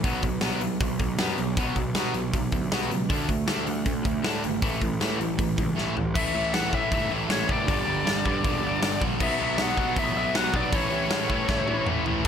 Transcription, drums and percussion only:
0.04 kick loud
0.04 open hi-hat medium
0.22 kick medium
0.22 open hi-hat medium
0.41 snare loud
0.41 open hi-hat medium
0.61 open hi-hat medium
0.80 kick loud
0.80 open hi-hat medium
0.99 kick medium
0.99 open hi-hat medium
1.19 snare loud
1.19 open hi-hat medium
1.38 open hi-hat medium
1.57 kick loud
1.57 open hi-hat medium
1.76 kick medium
1.76 open hi-hat medium
1.95 snare loud
1.95 open hi-hat medium
2.14 open hi-hat medium
2.33 kick loud
2.33 open hi-hat medium
2.52 kick medium
2.52 open hi-hat medium
2.72 snare loud
2.72 open hi-hat medium
2.91 open hi-hat medium
3.10 kick loud
3.10 open hi-hat medium
3.29 kick medium
3.29 open hi-hat medium
3.48 snare loud
3.48 open hi-hat medium
3.67 open hi-hat medium
3.85 kick loud
3.85 open hi-hat medium
4.05 kick medium
4.05 open hi-hat medium
4.24 snare loud
4.24 open hi-hat medium
4.44 open hi-hat medium
4.62 kick loud
4.62 open hi-hat medium
4.82 kick medium
4.82 open hi-hat medium
5.01 snare medium
5.01 open hi-hat medium
5.21 open hi-hat medium
5.39 kick loud
5.39 open hi-hat medium
5.58 kick medium
5.58 open hi-hat medium
5.78 snare medium
5.97 floor tom medium
6.15 kick loud
6.15 crash loud
6.54 snare loud
6.54 open hi-hat medium
6.73 kick medium
6.92 kick loud
6.92 open hi-hat medium
7.30 snare loud
7.30 open hi-hat medium
7.49 kick medium
7.68 kick loud
7.68 open hi-hat medium
8.07 snare loud
8.07 open hi-hat medium
8.26 kick medium
8.44 kick loud
8.44 open hi-hat medium
8.82 snare loud
8.82 open hi-hat medium
9.02 kick medium
9.20 kick loud
9.20 crash loud
9.58 snare loud
9.58 open hi-hat medium
9.77 kick medium
9.96 kick loud
9.96 open hi-hat medium
10.35 snare loud
10.35 open hi-hat medium
10.54 kick medium
10.72 kick loud
10.72 open hi-hat medium
11.11 snare loud
11.11 open hi-hat medium
11.30 kick medium
11.48 kick loud
11.48 snare medium
11.68 high tom medium
11.86 mid tom medium
12.06 floor tom medium

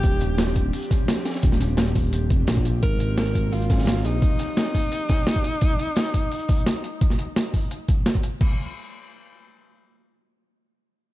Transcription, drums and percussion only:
0.03 kick loud
0.03 closed hi-hat medium
0.21 closed hi-hat loud
0.21 closed hi-hat medium
0.38 snare loud
0.38 closed hi-hat medium
0.48 closed hi-hat soft
0.55 kick medium
0.55 closed hi-hat medium
0.55 closed hi-hat loud
0.73 closed hi-hat medium
0.73 open hi-hat medium
0.83 closed hi-hat soft
0.90 kick loud
0.90 snare soft
0.90 closed hi-hat medium
1.08 snare loud
1.08 closed hi-hat medium
1.18 snare soft
1.25 snare loud
1.25 closed hi-hat medium
1.30 snare medium
1.30 closed hi-hat medium
1.34 snare loud
1.34 closed hi-hat medium
1.43 kick loud
1.43 closed hi-hat loud
1.43 closed hi-hat medium
1.52 snare soft
1.60 snare soft
1.60 closed hi-hat loud
1.60 closed hi-hat medium
1.77 snare loud
1.77 closed hi-hat medium
1.87 closed hi-hat soft
1.95 kick medium
1.95 closed hi-hat medium
1.95 open hi-hat medium
2.13 closed hi-hat medium
2.30 kick loud
2.30 closed hi-hat medium
2.47 snare loud
2.47 closed hi-hat medium
2.57 kick medium
2.65 closed hi-hat medium
2.83 kick loud
2.83 closed hi-hat medium
3.00 closed hi-hat medium
3.17 snare loud
3.17 closed hi-hat medium
3.27 closed hi-hat soft
3.35 kick medium
3.35 closed hi-hat medium
3.53 closed hi-hat medium
3.53 open hi-hat medium
3.62 closed hi-hat soft
3.70 kick loud
3.70 snare loud
3.70 closed hi-hat medium
3.78 snare medium
3.78 closed hi-hat medium
3.83 snare medium
3.83 closed hi-hat medium
3.87 snare loud
3.87 closed hi-hat medium
3.96 snare soft
4.04 snare soft
4.04 closed hi-hat medium
4.22 kick loud
4.22 closed hi-hat medium
4.39 snare soft
4.39 closed hi-hat medium
4.57 snare loud
4.57 closed hi-hat medium
4.66 closed hi-hat soft
4.75 kick medium
4.75 closed hi-hat medium
4.75 open hi-hat medium
4.92 closed hi-hat medium
5.09 kick loud
5.09 snare loud
5.09 closed hi-hat medium
5.27 snare loud
5.27 closed hi-hat medium
5.36 kick medium
5.44 closed hi-hat medium
5.61 kick loud
5.61 closed hi-hat medium
5.79 closed hi-hat medium
5.96 snare loud
5.96 closed hi-hat medium
6.06 closed hi-hat soft
6.14 kick medium
6.14 closed hi-hat medium
6.31 closed hi-hat medium
6.31 open hi-hat medium
6.40 closed hi-hat soft
6.48 kick loud
6.48 closed hi-hat medium
6.48 open hi-hat medium
6.58 closed hi-hat soft
6.66 snare soft
6.66 snare loud
6.66 closed hi-hat medium
6.84 closed hi-hat medium
7.01 kick loud
7.01 closed hi-hat medium
7.10 snare soft
7.19 closed hi-hat loud
7.36 snare loud
7.36 closed hi-hat medium
7.54 kick medium
7.54 open hi-hat medium
7.71 closed hi-hat medium
7.88 kick loud
7.88 closed hi-hat medium
8.06 snare loud
8.06 closed hi-hat medium
8.15 kick medium
8.23 closed hi-hat loud
8.41 kick loud
8.41 crash medium

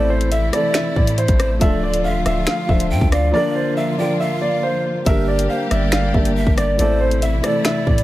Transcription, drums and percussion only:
0.21 closed hi-hat soft
0.32 closed hi-hat medium
0.53 cross-stick medium
0.53 closed hi-hat medium
0.74 finger snap loud
0.74 snare loud
0.74 closed hi-hat medium
0.96 kick medium
1.07 closed hi-hat medium
1.18 closed hi-hat medium
1.28 kick loud
1.28 closed hi-hat medium
1.40 cross-stick loud
1.40 closed hi-hat medium
1.61 kick loud
1.61 closed hi-hat medium
1.94 closed hi-hat medium
2.26 cross-stick medium
2.26 closed hi-hat medium
2.47 finger snap loud
2.47 snare loud
2.47 closed hi-hat medium
2.69 kick medium
2.80 closed hi-hat medium
3.01 kick loud
3.12 cross-stick loud
3.12 closed hi-hat medium
5.06 kick loud
5.06 closed hi-hat medium
5.39 closed hi-hat medium
5.71 cross-stick medium
5.71 closed hi-hat medium
5.92 finger snap loud
5.92 snare loud
5.92 closed hi-hat medium
6.14 kick medium
6.25 closed hi-hat medium
6.47 kick loud
6.58 cross-stick loud
6.58 closed hi-hat medium
6.79 closed hi-hat medium
7.11 closed hi-hat soft
7.22 closed hi-hat medium
7.44 cross-stick medium
7.44 closed hi-hat medium
7.65 finger snap loud
7.65 snare loud
7.65 closed hi-hat medium
7.87 kick medium
7.98 closed hi-hat medium

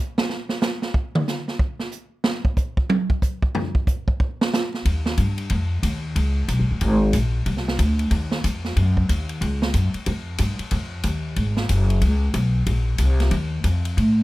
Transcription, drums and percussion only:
0.18 snare loud
0.30 snare soft
0.49 snare medium
0.62 snare loud
0.62 hi-hat pedal medium
0.82 snare medium
0.94 kick medium
1.15 mid tom loud
1.28 snare medium
1.28 hi-hat pedal medium
1.48 snare soft
1.59 kick medium
1.79 snare soft
1.91 hi-hat pedal medium
2.24 snare loud
2.45 kick medium
2.57 kick medium
2.57 hi-hat pedal medium
2.77 kick medium
2.90 high tom loud
3.10 kick medium
3.22 kick medium
3.22 hi-hat pedal medium
3.42 kick medium
3.55 floor tom loud
3.75 kick medium
3.87 kick medium
3.87 hi-hat pedal medium
4.08 kick medium
4.20 kick medium
4.41 snare loud
4.53 snare loud
4.53 hi-hat pedal medium
4.74 snare soft
4.85 kick soft
4.85 ride medium
5.06 snare medium
5.17 kick soft
5.17 hi-hat pedal medium
5.17 ride medium
5.38 ride medium
5.50 kick soft
5.50 ride medium
5.83 kick soft
5.83 hi-hat pedal medium
5.83 ride medium
6.16 kick soft
6.16 ride medium
6.48 kick soft
6.48 hi-hat pedal medium
6.48 ride medium
6.81 kick soft
6.81 ride medium
7.13 kick soft
7.13 hi-hat pedal medium
7.13 ride medium
7.46 kick soft
7.46 ride medium
7.57 snare soft
7.68 snare medium
7.79 kick soft
7.79 hi-hat pedal medium
7.79 ride medium
7.99 ride medium
8.11 kick soft
8.11 ride medium
8.31 snare medium
8.44 kick soft
8.44 hi-hat pedal medium
8.44 ride medium
8.65 snare soft
8.77 kick soft
8.77 ride medium
8.97 kick medium
9.09 kick soft
9.09 hi-hat pedal medium
9.09 ride medium
9.29 ride medium
9.42 kick soft
9.42 ride medium
9.62 snare medium
9.74 kick soft
9.74 hi-hat pedal medium
9.74 ride medium
9.94 ride medium
10.06 kick soft
10.06 ride medium
10.38 kick soft
10.38 hi-hat pedal medium
10.38 ride medium
10.59 ride medium
10.71 kick soft
10.71 ride medium
11.03 kick soft
11.03 hi-hat pedal medium
11.03 ride medium
11.36 kick soft
11.36 ride medium
11.57 snare medium
11.69 kick soft
11.69 hi-hat pedal medium
11.69 ride medium
11.90 ride medium
12.01 kick soft
12.01 ride medium
12.34 kick soft
12.34 hi-hat pedal medium
12.34 ride medium
12.66 kick soft
12.66 ride medium
12.98 kick soft
12.98 hi-hat pedal medium
12.98 ride medium
13.20 snare soft
13.20 ride medium
13.31 kick soft
13.31 ride medium
13.64 kick soft
13.64 hi-hat pedal medium
13.64 ride medium
13.85 ride medium
13.97 kick soft
13.97 ride medium

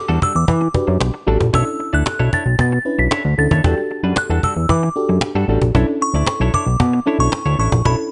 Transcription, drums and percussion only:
0.22 cajon bass loud
0.48 cajon bass loud
0.62 cajon slap soft
0.74 cajon bass loud
0.88 cajon slap soft
1.00 cajon slap medium
1.00 cajon slap loud
1.28 cajon slap soft
1.41 cajon bass loud
1.54 cajon bass loud
1.80 cajon slap soft
2.06 cajon slap medium
2.06 cajon slap loud
2.33 cajon bass medium
2.59 cajon bass loud
2.73 cajon slap soft
2.86 cajon slap soft
3.11 cajon slap loud
3.51 cajon bass loud
3.64 cajon bass loud
3.91 cajon slap soft
4.16 cajon slap loud
4.43 cajon bass loud
4.69 cajon bass loud
4.96 cajon slap soft
5.21 cajon slap loud
5.62 cajon bass medium
5.75 cajon bass loud
6.01 cajon slap soft
6.26 cajon slap medium
6.26 cajon slap loud
6.54 cajon bass medium
6.80 cajon bass loud
6.94 cajon slap soft
7.07 cajon slap soft
7.32 cajon slap medium
7.32 cajon slap loud
7.72 cajon bass loud
7.85 cajon bass loud

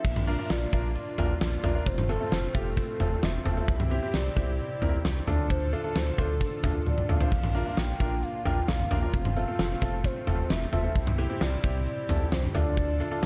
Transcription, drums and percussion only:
0.05 kick loud
0.05 crash loud
0.16 mid tom loud
0.27 closed hi-hat medium
0.50 snare loud
0.50 closed hi-hat medium
0.73 kick loud
0.73 closed hi-hat medium
0.95 closed hi-hat medium
1.18 closed hi-hat medium
1.18 mid tom loud
1.18 cowbell medium
1.41 snare loud
1.41 closed hi-hat medium
1.64 closed hi-hat medium
1.64 mid tom medium
1.64 cowbell medium
1.86 kick loud
1.86 closed hi-hat medium
1.98 mid tom loud
2.09 closed hi-hat medium
2.09 cowbell medium
2.32 snare loud
2.32 closed hi-hat medium
2.55 kick loud
2.55 closed hi-hat medium
2.77 kick loud
2.77 closed hi-hat medium
3.00 closed hi-hat medium
3.00 mid tom loud
3.23 snare loud
3.23 closed hi-hat medium
3.45 closed hi-hat medium
3.45 mid tom loud
3.68 kick loud
3.68 closed hi-hat medium
3.80 mid tom loud
3.91 closed hi-hat medium
4.14 snare loud
4.14 closed hi-hat medium
4.36 kick loud
4.36 closed hi-hat medium
4.36 cowbell medium
4.59 closed hi-hat medium
4.82 closed hi-hat medium
4.82 mid tom loud
5.05 snare loud
5.05 closed hi-hat medium
5.27 closed hi-hat medium
5.27 mid tom medium
5.50 kick loud
5.50 closed hi-hat medium
5.73 closed hi-hat medium
5.96 snare loud
5.96 closed hi-hat medium
6.18 kick loud
6.18 closed hi-hat medium
6.18 cowbell medium
6.41 kick medium
6.41 closed hi-hat medium
6.64 kick loud
6.64 closed hi-hat medium
6.64 mid tom loud
6.64 cowbell medium
6.86 high tom medium
6.98 mid tom medium
7.09 mid tom loud
7.20 floor tom loud
7.32 kick loud
7.32 crash medium
7.43 mid tom loud
7.55 closed hi-hat medium
7.77 snare loud
7.77 closed hi-hat medium
8.00 kick loud
8.00 closed hi-hat medium
8.00 cowbell medium
8.23 closed hi-hat medium
8.45 closed hi-hat medium
8.45 mid tom medium
8.45 cowbell medium
8.68 snare loud
8.68 closed hi-hat medium
8.79 mid tom medium
8.91 closed hi-hat medium
8.91 mid tom medium
8.91 cowbell medium
9.14 kick loud
9.14 closed hi-hat medium
9.25 mid tom loud
9.36 closed hi-hat medium
9.59 snare loud
9.59 closed hi-hat medium
9.82 kick loud
9.82 closed hi-hat medium
10.04 kick medium
10.04 closed hi-hat medium
10.27 closed hi-hat medium
10.27 mid tom loud
10.50 snare loud
10.50 closed hi-hat medium
10.73 closed hi-hat medium
10.73 mid tom loud
10.96 kick loud
10.96 closed hi-hat medium
11.07 mid tom loud
11.18 closed hi-hat medium
11.18 cowbell medium
11.41 snare loud
11.41 closed hi-hat medium
11.64 kick loud
11.64 closed hi-hat medium
11.86 closed hi-hat medium
12.09 closed hi-hat medium
12.09 mid tom loud
12.32 snare loud
12.32 closed hi-hat medium
12.43 mid tom medium
12.55 closed hi-hat medium
12.55 mid tom medium
12.55 cowbell medium
12.77 kick loud
12.77 closed hi-hat medium
13.00 closed hi-hat medium
13.23 snare loud
13.23 closed hi-hat medium

